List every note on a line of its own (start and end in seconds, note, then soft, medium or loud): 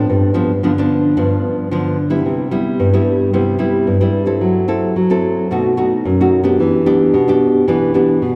0.00 0.30 F3 medium
0.00 0.30 B3 medium
0.00 0.30 D4 medium
0.10 0.60 G2 medium
0.34 0.51 F3 medium
0.34 0.51 B3 medium
0.34 0.51 D4 medium
0.63 1.14 D3 medium
0.63 0.71 F3 medium
0.63 0.71 B3 medium
0.63 0.71 D4 medium
0.78 1.13 F3 medium
0.78 1.13 B3 medium
0.78 1.14 D4 medium
1.17 1.68 G2 medium
1.17 1.67 F3 medium
1.17 1.66 B3 medium
1.17 1.67 D4 medium
1.71 2.23 D3 medium
1.71 1.96 F3 medium
1.71 1.97 B3 medium
1.71 1.97 D4 medium
2.10 2.47 G3 medium
2.10 2.47 B3 medium
2.10 2.47 E4 medium
2.26 2.77 C3 medium
2.51 2.88 G3 medium
2.51 2.88 B3 medium
2.51 2.88 E4 medium
2.80 3.31 G2 medium
2.93 3.29 G3 medium
2.93 3.30 B3 medium
2.93 3.30 E4 medium
3.33 3.85 C3 medium
3.33 3.56 G3 medium
3.33 3.56 B3 medium
3.33 3.57 E4 medium
3.58 3.96 G3 medium
3.58 3.96 B3 medium
3.58 3.96 E4 medium
3.87 4.39 G2 medium
4.01 4.24 G3 medium
4.01 4.24 B3 medium
4.01 4.25 E4 medium
4.26 4.63 C4 medium
4.26 4.64 E4 medium
4.26 4.64 A4 medium
4.41 4.93 F#3 medium
4.68 4.94 C4 medium
4.68 4.94 E4 medium
4.68 4.94 A4 medium
4.96 5.48 F#3 medium
5.10 5.46 C4 medium
5.10 5.47 E4 medium
5.10 5.47 A4 medium
5.51 6.03 B2 medium
5.51 5.74 A3 medium
5.51 5.74 D#4 medium
5.51 5.74 F#4 medium
5.77 6.03 A3 medium
5.77 6.03 D#4 medium
5.77 6.03 F#4 medium
6.05 6.57 F#2 medium
6.20 6.42 A3 medium
6.20 6.42 D#4 medium
6.20 6.43 F#4 medium
6.43 6.81 B3 medium
6.43 6.81 D4 medium
6.43 6.82 G4 medium
6.60 7.11 E3 medium
6.86 7.23 B3 medium
6.86 7.23 D4 medium
6.86 7.23 G4 medium
7.14 7.65 B2 medium
7.28 7.64 B3 medium
7.28 7.64 D4 medium
7.28 7.64 G4 medium
7.68 8.19 E3 medium
7.68 7.91 B3 medium
7.68 7.91 D4 medium
7.68 7.91 G4 medium
7.94 8.20 B3 medium
7.94 8.20 D4 medium
7.94 8.21 G4 medium
8.22 8.36 B2 medium